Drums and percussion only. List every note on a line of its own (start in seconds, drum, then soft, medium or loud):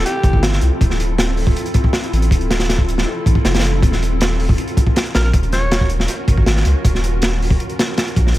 0.06 closed hi-hat medium
0.23 kick loud
0.23 closed hi-hat medium
0.33 kick medium
0.43 snare loud
0.43 closed hi-hat medium
0.53 snare medium
0.61 closed hi-hat medium
0.81 kick loud
0.81 closed hi-hat medium
0.90 snare soft
1.00 closed hi-hat medium
1.18 snare loud
1.18 closed hi-hat medium
1.37 open hi-hat medium
1.47 kick medium
1.56 closed hi-hat medium
1.66 closed hi-hat soft
1.74 kick medium
1.74 closed hi-hat medium
1.84 kick loud
1.93 snare loud
1.93 closed hi-hat medium
2.03 closed hi-hat soft
2.13 closed hi-hat medium
2.22 closed hi-hat soft
2.31 kick loud
2.31 closed hi-hat medium
2.41 closed hi-hat soft
2.51 snare loud
2.51 closed hi-hat medium
2.59 snare loud
2.59 closed hi-hat medium
2.69 snare loud
2.69 closed hi-hat medium
2.78 kick medium
2.88 closed hi-hat medium
2.98 snare medium
3.26 kick loud
3.26 closed hi-hat medium
3.35 kick medium
3.45 snare loud
3.45 closed hi-hat medium
3.54 snare loud
3.54 closed hi-hat medium
3.59 snare medium
3.59 closed hi-hat medium
3.64 closed hi-hat medium
3.83 kick loud
3.83 closed hi-hat medium
3.92 snare soft
4.03 closed hi-hat medium
4.21 snare loud
4.21 closed hi-hat medium
4.40 open hi-hat medium
4.49 kick loud
4.58 closed hi-hat loud
4.68 closed hi-hat soft
4.77 kick loud
4.77 closed hi-hat medium
4.87 kick loud
4.96 snare loud
4.96 closed hi-hat medium
5.06 closed hi-hat soft
5.15 snare loud
5.15 closed hi-hat medium
5.33 kick loud
5.33 closed hi-hat medium
5.43 closed hi-hat soft
5.52 snare soft
5.52 closed hi-hat medium
5.71 snare loud
5.71 closed hi-hat medium
5.81 kick medium
5.90 closed hi-hat medium
6.00 snare medium
6.08 closed hi-hat medium
6.28 kick medium
6.28 closed hi-hat medium
6.38 kick medium
6.46 snare loud
6.46 closed hi-hat medium
6.57 snare medium
6.65 closed hi-hat medium
6.85 kick loud
6.85 closed hi-hat medium
6.95 snare soft
7.04 closed hi-hat medium
7.22 snare loud
7.22 closed hi-hat medium
7.42 open hi-hat medium
7.50 kick loud
7.60 closed hi-hat medium
7.69 closed hi-hat soft
7.79 snare loud
7.79 closed hi-hat medium
7.98 snare loud
7.98 closed hi-hat loud
8.08 closed hi-hat soft
8.16 kick loud
8.16 closed hi-hat medium
8.27 snare soft
8.34 closed hi-hat medium